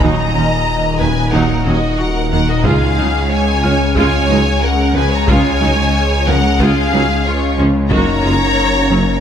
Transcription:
Already playing: detuned saw bass D#1, analog synth pad A#2 D#3 D#5 A#5, french horn section A#2 D#4, grand piano F#4 A#5
0.00 tuba D#2, cello section D#2, viola section F#3 D#4, violin section D#5 A#5, grand piano G#5, taiko
0.33 tuba D#2, cello section D#2, viola section C#4 F4
0.98 tuba D#2, cello section D#2, viola section D#3 F#3, violin section B4 G#5
1.31 tuba D#2, cello section D#2, viola section F#3 D#4, violin section A#4 F#5, taiko
1.65 tuba D#2, cello section D#2, viola section F#3 C#4, violin section F#4 D#5
1.98 grand piano F#4, violin section A#4 F#5
2.31 cello section D#2, tuba D#2, viola section D#3 A#3, violin section A#4 F#5
2.48 violin section F#4 D#5
2.63 detuned saw bass C#2, cello section C#2, tuba C#2, analog synth pad G#3 C#4 G#4 C#5, viola section G#3 F4, french horn section G#3, violin section G#4 F5, taiko
2.98 cello section C#2, tuba C#2, viola section F#3 D#4
3.30 french horn section C#4, violin section C#5 G#5
3.63 tuba C#2, cello section C#2, viola section C#4 F4, grand piano F6
3.95 tuba C#2, cello section C#2, viola section G#3 F4, violin section C#5 G#5, taiko
4.29 tuba C#2, cello section C#2, viola section F#3 D#4
4.62 violin section A#4 F#5
4.95 tuba C#2, cello section C#2, viola section F3 C#4, violin section B4 G#5
5.11 violin section C#5 A#5
5.28 cello section C#2, tuba C#2, viola section G#3 F4, violin section C#5 G#5, taiko
5.61 tuba C#2, cello section C#2, viola section F#3 D#4
6.26 tuba C#2, cello section C#2, viola section F3 C#4, violin section A#4 F#5
6.59 tuba C#2, cello section C#2, viola section G#3 F4, violin section G#4 F5, taiko
6.93 tuba C#2, cello section C#2, viola section F#3 D#4
7.25 violin section F4 C#5
7.58 tuba C#2, cello section C#2, viola section F3 C#4
7.90 tuba F#1, detuned saw bass F#1, cello section F#2, analog synth pad A#3 C#4 A#4 C#5, french horn section A#3 C#4, viola section A#3 F#4, grand piano D#4 D#5, violin section C#5 A#5, taiko
8.24 tuba F#1, cello section F#2, viola section G#3 F4
8.90 tuba F#1, cello section F#2, viola section F#3 C#4

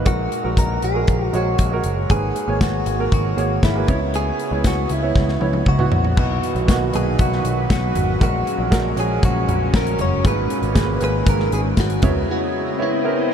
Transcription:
0.05 picked electric bass A#1, upright piano A#2 G#3 F#4 A#4, clean electric guitar F#4, kick, closed hi-hat
0.32 closed hi-hat
0.43 picked electric bass A#1, upright piano G#3 F#4 A#4
0.57 picked electric bass A#1, clean electric guitar A#4, kick, closed hi-hat
0.82 picked electric bass A#1, clean electric guitar G#4, closed hi-hat
0.94 upright piano G#3 F#4 A#4
1.07 picked electric bass A#1, kick, closed hi-hat
1.33 picked electric bass A#1, upright piano G#3 F#4 C#5, clean electric guitar F#4, closed hi-hat
1.58 picked electric bass A#1, kick, closed hi-hat
1.72 upright piano G#3 F#4 A#4
1.83 picked electric bass F#1, closed hi-hat
2.10 picked electric bass G#1, upright piano G#2 A#3 G#4 B4, clean electric guitar G#4, kick, closed hi-hat
2.36 closed hi-hat
2.48 picked electric bass G#1, upright piano A#3 G#4 C#5
2.61 picked electric bass G#1, clean electric guitar F#4, kick, snare, closed hi-hat
2.86 picked electric bass G#1, closed hi-hat
2.99 upright piano A#3 G#4 A#4
3.12 picked electric bass G#1, clean electric guitar F#4, kick, closed hi-hat
3.37 picked electric bass G#1, upright piano A#3 G#4 C#5, closed hi-hat
3.63 picked electric bass G#1, clean electric guitar E4, kick, snare, closed hi-hat
3.75 upright piano A#3 G#4 B4
3.88 picked electric bass C#2, upright piano C#3 B3 E4 C#5, kick, closed hi-hat
4.14 clean electric guitar G#4, closed hi-hat
4.39 closed hi-hat
4.51 picked electric bass C#2, upright piano B3 E4 C#5
4.64 picked electric bass C#2, clean electric guitar F#4, kick, snare, closed hi-hat
4.89 picked electric bass C#2, clean electric guitar E4, closed hi-hat
5.02 upright piano B3 E4 C#5
5.15 picked electric bass C#2, kick, snare
5.28 snare
5.40 picked electric bass C#2, upright piano B3 E4 C#5, high tom
5.53 high tom
5.66 picked electric bass C#2, clean electric guitar F#4, kick, mid tom
5.78 upright piano B3 E4 F#4, mid tom
5.92 picked electric bass A#1, floor tom
6.05 floor tom
6.16 picked electric bass B1, upright piano A#2 B2 D#4 B4, analog synth pad D#3 F#3 B4, clean electric guitar F#4, kick, crash
6.43 closed hi-hat
6.55 picked electric bass B1, closed hi-hat
6.67 picked electric bass B1, upright piano A#3 D#4 F#4, kick, snare, closed hi-hat
6.93 picked electric bass B1, upright piano A#2 D#4 B4, clean electric guitar G#4, closed hi-hat
7.19 picked electric bass B1, clean electric guitar F#4, kick, closed hi-hat
7.32 snare
7.44 picked electric bass B1, closed hi-hat
7.70 picked electric bass B1, clean electric guitar F#4, kick, snare, closed hi-hat
7.95 picked electric bass G#1, closed hi-hat, floor tom
8.20 picked electric bass A#1, upright piano A#2 G#3 F#4 A#4, analog synth pad F#3 G#3 C#4, clean electric guitar F#4, kick, closed hi-hat
8.47 closed hi-hat
8.59 picked electric bass A#1
8.71 picked electric bass A#1, upright piano G#3 F#4 A#4, kick, snare, closed hi-hat
8.96 picked electric bass A#1, upright piano G#3 F#4 C#5, clean electric guitar G#4, closed hi-hat
9.23 picked electric bass A#1, clean electric guitar F#4, kick, closed hi-hat
9.47 picked electric bass A#1, closed hi-hat, floor tom
9.73 picked electric bass A#1, clean electric guitar A#4, kick, snare, closed hi-hat
9.87 closed hi-hat
9.98 picked electric bass F#1, clean electric guitar C#5, closed hi-hat, floor tom
10.24 picked electric bass G#1, upright piano G#2 A#2 G#4 B4, clean electric guitar B4, kick, closed hi-hat
10.50 closed hi-hat
10.62 picked electric bass G#1, closed hi-hat
10.74 picked electric bass G#1, upright piano A#3 G#4 B4, kick, snare, closed hi-hat
11.00 picked electric bass G#1, upright piano A#3 G#4 A#4, clean electric guitar B4, closed hi-hat
11.27 picked electric bass G#1, clean electric guitar A#4, kick, closed hi-hat
11.40 snare
11.51 picked electric bass G#1, clean electric guitar G#4, closed hi-hat
11.77 picked electric bass G#1, clean electric guitar F#4, kick, snare, closed hi-hat
11.90 closed hi-hat
12.02 picked electric bass C#2, analog synth pad C#3 E4 D#5, upright piano C#3 B3 E4 C#5, kick, closed hi-hat, floor tom
12.28 clean electric guitar F#4, swell
12.78 upright piano B3 E4 C#5, clean electric guitar E4
13.04 upright piano B3 E4 A#4

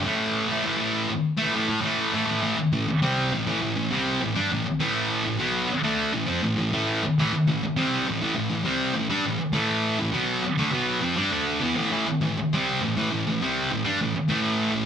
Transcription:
0.02 distorted electric guitar A2 E3
0.06 distorted electric guitar A3
0.48 distorted electric guitar A3
0.52 distorted electric guitar E3
0.64 distorted electric guitar A2 E3
0.68 distorted electric guitar A3
0.78 distorted electric guitar A3
0.82 distorted electric guitar E3
1.09 muted distorted electric guitar stroke
1.37 distorted electric guitar A3
1.41 distorted electric guitar E3
1.52 distorted electric guitar A2 E3 A3
1.68 muted distorted electric guitar stroke
1.81 distorted electric guitar A2 E3
1.85 distorted electric guitar A3
2.13 distorted electric guitar A2 E3 A3
2.26 distorted electric guitar A3
2.31 distorted electric guitar E3
2.42 distorted electric guitar A2 E3
2.57 muted distorted electric guitar stroke
2.73 distorted electric guitar A2 E3
2.89 muted distorted electric guitar stroke
3.02 distorted electric guitar C3 G3 C4
3.33 distorted electric guitar A2 E3
3.46 distorted electric guitar A2 E3
3.61 distorted electric guitar A2 E3
3.77 distorted electric guitar A2 E3
3.91 distorted electric guitar C3 G3 C4
4.21 distorted electric guitar A2 E3
4.35 distorted electric guitar G3 D4
4.51 distorted electric guitar A2 E3
4.66 muted distorted electric guitar stroke
4.80 distorted electric guitar A2 E3 A3
5.25 distorted electric guitar A2 E3
5.39 distorted electric guitar B2 F#3 B3
5.69 muted distorted electric guitar stroke
5.83 distorted electric guitar D3 A3 D4
6.13 distorted electric guitar A2 E3
6.27 distorted electric guitar F3 C4
6.43 distorted electric guitar A2 E3
6.57 distorted electric guitar A2 E3
6.72 distorted electric guitar A2 E3 A3
7.04 muted distorted electric guitar stroke
7.19 distorted electric guitar A2 E3
7.34 muted distorted electric guitar stroke
7.47 distorted electric guitar A2 E3
7.64 muted distorted electric guitar stroke
7.77 distorted electric guitar C3 G3 C4
8.08 distorted electric guitar A2 E3
8.21 distorted electric guitar A2 E3
8.35 distorted electric guitar A2 E3
8.50 distorted electric guitar A2 E3
8.64 distorted electric guitar C3 G3 C4
8.94 distorted electric guitar A2 E3
9.10 distorted electric guitar G3 D4
9.25 distorted electric guitar A2 E3
9.39 muted distorted electric guitar stroke
9.53 distorted electric guitar A2 E3 A3
9.99 distorted electric guitar A2 E3
10.12 distorted electric guitar B2 F#3 B3
10.44 muted distorted electric guitar stroke
10.58 distorted electric guitar D3 A3
10.71 distorted electric guitar B2 F#3 B3
11.01 distorted electric guitar F3 C4
11.17 distorted electric guitar G3 D4
11.31 distorted electric guitar D3 A3 D4
11.61 distorted electric guitar E3 B3
11.76 distorted electric guitar A2 E3
11.92 distorted electric guitar A2 E3
12.07 muted distorted electric guitar stroke
12.21 distorted electric guitar A2 E3
12.37 muted distorted electric guitar stroke
12.53 distorted electric guitar C3 G3 C4
12.81 distorted electric guitar A2 E3
12.96 distorted electric guitar A2 E3
13.11 distorted electric guitar A2 E3
13.27 distorted electric guitar A2 E3
13.41 distorted electric guitar C3 G3 C4
13.71 distorted electric guitar A2 E3
13.84 distorted electric guitar G3 D4
14.00 distorted electric guitar A2 E3
14.15 muted distorted electric guitar stroke
14.28 distorted electric guitar A2 E3 A3
14.72 distorted electric guitar A2 E3

